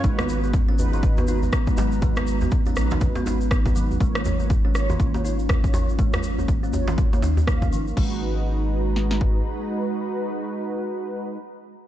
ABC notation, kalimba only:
X:1
M:4/4
L:1/16
Q:"Swing 16ths" 1/4=121
K:G#dor
V:1 name="Kalimba"
G, B, z B, z C z D, z B, D z B, z F, z | G, B, z B, z C z D, z B, D z B, z F, z | G, A, z A, z C z D, z A, D z A, z E, z | G, A, z A, z C z D, z A, D z A, z E, z |
G,2 z12 z2 | z16 |]